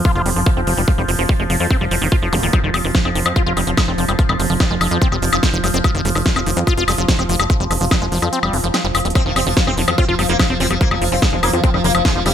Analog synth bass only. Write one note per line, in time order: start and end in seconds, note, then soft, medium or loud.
0.15 0.23 F1 medium
0.26 0.33 F1 loud
0.36 0.43 F1 medium
0.57 0.64 F1 medium
0.67 0.75 F1 loud
0.77 0.85 F1 medium
0.98 1.06 F1 medium
1.08 1.16 F1 loud
1.19 1.26 F1 medium
1.40 1.47 F1 medium
1.50 1.57 F1 loud
1.60 1.68 F2 medium
1.81 1.88 F1 medium
1.91 1.99 F1 medium
2.02 2.09 F1 medium
2.22 2.30 F1 medium
2.33 2.40 F1 loud
2.43 2.50 D#1 medium
2.64 2.71 F1 medium
2.74 2.81 F1 loud
2.84 2.92 F1 medium
3.05 3.12 F1 medium
3.15 3.23 F1 loud
3.26 3.33 F2 loud
3.46 3.54 F1 medium
3.57 3.64 F1 loud
3.67 3.75 F1 medium
3.88 3.95 F1 medium
3.98 4.06 F1 loud
4.09 4.16 F1 medium
4.29 4.37 F1 medium
4.40 4.47 F1 loud
4.50 4.57 F1 medium
4.71 4.78 F1 medium
4.81 4.88 F1 loud
4.91 4.99 F2 medium
5.12 5.19 F1 medium
5.22 5.30 F1 loud
5.33 5.40 F1 medium
5.53 5.61 F1 medium
5.64 5.71 F1 loud
5.74 5.81 F1 medium
5.95 6.02 F1 medium
6.05 6.12 F1 loud
6.15 6.23 F1 medium
6.36 6.43 F1 medium
6.46 6.54 F1 medium
6.57 6.64 F2 loud
6.77 6.85 F1 medium
6.88 6.95 F1 loud
6.98 7.06 F1 medium
7.19 7.26 F1 medium
7.29 7.37 F1 loud
7.40 7.47 F1 medium
7.60 7.68 F1 medium
7.71 7.78 F1 loud
7.81 7.88 F1 medium
8.02 8.09 F1 medium
8.12 8.19 F1 loud
8.22 8.30 F2 medium
8.43 8.50 F1 medium
8.53 8.61 F1 medium
8.64 8.71 F1 loud
8.84 8.92 F1 medium
8.95 9.02 F1 loud
9.05 9.12 D#1 medium
9.26 9.33 F1 medium
9.36 9.44 F1 loud
9.46 9.54 F1 medium
9.67 9.75 F1 medium
9.77 9.85 F1 loud
9.88 9.95 F2 medium
10.08 10.16 F1 medium
10.19 10.26 F1 loud
10.29 10.37 F1 medium
10.50 10.57 F1 medium
10.60 10.68 F1 loud
10.71 10.78 F1 medium
10.91 10.99 F1 medium
11.02 11.09 F1 loud
11.12 11.19 F1 medium
11.33 11.40 F1 medium
11.43 11.50 F1 loud
11.53 11.61 F2 loud
11.74 11.81 F1 medium
11.84 11.92 F1 loud
11.95 12.02 F1 medium
12.15 12.23 F1 medium
12.26 12.33 F1 loud